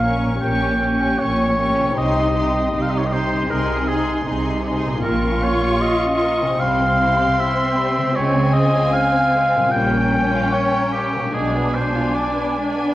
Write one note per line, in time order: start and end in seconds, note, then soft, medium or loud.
0.00 0.35 A#1 soft
0.00 0.25 A#2 soft
0.00 0.34 A#2 medium
0.00 1.95 A#3 soft
0.00 0.29 C#4 soft
0.00 1.99 A#4 soft
0.00 0.42 A#4 soft
0.00 0.16 F5 medium
0.00 0.40 C#6 soft
0.05 0.42 C#4 soft
0.26 1.93 A#2 soft
0.30 1.95 C#4 soft
0.35 1.93 G4 soft
0.41 1.11 A#1 soft
0.41 1.12 A#2 soft
0.41 0.80 C#4 soft
0.41 0.79 G4 soft
0.41 1.21 G5 medium
0.41 0.80 C#6 soft
0.80 1.19 C#4 soft
0.80 1.19 G4 soft
0.80 1.20 C#6 soft
1.19 1.90 A#1 medium
1.19 1.89 A#2 medium
1.19 1.57 C#4 soft
1.19 1.58 G4 soft
1.19 1.98 C#5 medium
1.19 1.59 C#6 soft
1.58 1.97 C#4 soft
1.58 1.96 G4 soft
1.58 1.98 C#6 soft
1.80 3.32 C3 soft
1.85 3.36 C4 soft
1.90 3.41 D#4 soft
1.94 2.65 C2 soft
1.94 2.35 D#4 medium
1.94 3.51 G4 soft
1.94 2.32 G4 soft
1.94 2.34 C6 medium
1.98 2.66 C3 medium
1.98 2.83 D#5 medium
2.33 2.72 D#4 soft
2.33 2.72 G4 soft
2.33 2.73 C6 soft
2.73 3.42 C2 medium
2.73 3.42 C3 medium
2.73 3.11 D#4 soft
2.73 3.11 G4 soft
2.73 3.11 C6 soft
2.82 2.92 F5 medium
2.90 2.99 D#5 medium
2.98 3.08 C#5 medium
3.06 3.14 D#5 medium
3.12 3.49 D#4 soft
3.12 3.49 G4 soft
3.12 3.52 C5 medium
3.12 3.48 C6 soft
3.33 4.98 C3 soft
3.33 5.00 C4 soft
3.42 5.02 D#4 soft
3.46 3.86 D#4 soft
3.46 5.04 G#4 soft
3.46 3.87 G#4 soft
3.46 3.90 A#4 medium
3.46 3.87 C6 soft
3.51 4.18 C2 medium
3.51 4.18 C3 medium
3.88 4.25 D#4 soft
3.88 4.27 G#4 medium
3.88 4.25 G#4 soft
3.88 4.26 C6 soft
4.26 4.95 C2 medium
4.26 4.95 C3 medium
4.26 4.64 D#4 soft
4.26 4.64 G#4 soft
4.26 4.64 C6 soft
4.65 5.03 D#4 soft
4.65 5.03 G#4 medium
4.65 5.03 C6 soft
4.86 6.54 A#2 soft
4.86 6.56 C#4 soft
4.95 6.59 F4 soft
4.99 6.50 G4 soft
4.99 5.44 A#4 medium
5.03 5.69 A#1 medium
5.03 5.69 A#2 medium
5.03 5.23 A#3 soft
5.03 6.56 F4 medium
5.03 6.57 C#6 medium
5.25 5.43 C#4 soft
5.43 5.63 F4 soft
5.43 5.83 C#5 medium
5.66 5.83 G4 soft
5.81 6.03 F4 soft
5.81 6.61 D#5 medium
6.05 6.23 C#4 soft
6.22 6.41 A#3 soft
6.41 8.10 C3 medium
6.41 6.61 C#4 soft
6.46 8.06 C4 soft
6.51 8.14 G4 soft
6.60 7.27 C2 medium
6.60 7.26 C3 medium
6.60 9.74 C4 soft
6.60 7.41 F5 medium
6.60 8.16 C6 medium
6.64 6.81 G3 medium
6.81 7.00 C4 soft
7.01 7.20 E4 medium
7.19 7.39 G4 medium
7.40 7.58 E4 soft
7.40 8.18 E5 medium
7.57 7.76 C4 medium
7.77 7.96 G3 medium
7.96 9.68 C#3 soft
7.96 8.16 C4 medium
8.02 9.70 G#3 soft
8.07 9.72 C4 soft
8.11 8.34 G#3 medium
8.11 9.67 F4 soft
8.16 8.81 C#2 medium
8.16 8.81 C#3 medium
8.16 8.53 C#5 medium
8.16 9.74 G#5 medium
8.36 8.55 C4 soft
8.53 8.75 C#4 medium
8.53 8.95 D#5 medium
8.75 8.94 F4 soft
8.93 9.14 C#4 medium
8.93 9.73 F5 medium
9.14 9.34 C4 medium
9.36 9.54 G#3 medium
9.55 11.28 A#2 medium
9.55 11.30 G3 soft
9.55 9.75 C4 soft
9.64 11.33 C#4 soft
9.69 11.28 F4 soft
9.69 10.55 G5 medium
9.74 10.41 A#1 medium
9.74 10.40 A#2 medium
9.74 9.93 G3 medium
9.74 11.34 C#4 medium
9.74 11.34 G5 medium
9.94 10.14 A#3 soft
10.13 10.33 C#4 medium
10.33 10.53 F4 medium
10.53 10.74 C#4 soft
10.53 10.92 C#5 medium
10.74 10.94 A#3 soft
10.93 11.15 G3 medium
10.93 11.35 G4 medium
11.13 12.94 B2 soft
11.13 11.34 A#3 soft
11.21 12.94 G#3 soft
11.25 12.94 D4 soft
11.29 12.94 F4 soft
11.34 12.00 B1 medium
11.34 11.99 B2 medium
11.34 11.53 G#3 medium
11.34 12.94 D4 medium
11.34 11.76 G#4 medium
11.34 12.94 G#5 medium
11.56 11.74 B3 soft
11.74 11.93 D4 soft
11.74 12.16 C5 medium
11.95 12.14 F4 soft
12.15 12.33 D4 soft
12.15 12.67 D5 medium
12.35 12.54 B3 soft
12.57 12.74 G#3 soft
12.77 12.94 B3 soft